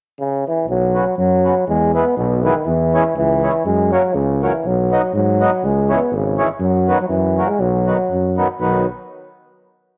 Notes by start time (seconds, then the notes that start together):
0.20 C#3
0.47 E3
0.68 B1 F#3
0.94 C#3 F#3 B3
1.18 F#2 F#3
1.44 C#3 F#3 B3
1.68 E2 G#3
1.94 E3 G#3 B3
2.17 B1 B2
2.44 D#3 E3 G#3 B3
2.66 E2 E3
2.94 E3 G#3 C#4
3.16 C#2 E3
3.43 E3 G#3 C#4
3.65 F#2 G#3
3.92 F#3 A#3 C#4
4.14 C#2 C#3
4.43 E3 F#3 A#3 C#4
4.65 B1 F#3
4.92 F#3 B3 D#4
5.13 G#2 F#3
5.41 F#3 B3 D#4
5.63 C#2 G#3
5.89 E3 G#3 C#4
5.94 B3
6.11 G#1
6.16 C#3
6.38 E3 G#3 C#4
6.60 F#2 F#3
6.88 D#3 F#3 B3
7.00 F#3
7.09 F#2 E3
7.37 C#3 F#3 A#3
7.48 G#3
7.59 B1 F#3
7.87 D#3 F#3 B3
8.10 F#2
8.37 D#3 F#3 B3
8.60 B1 D#3 F#3 B3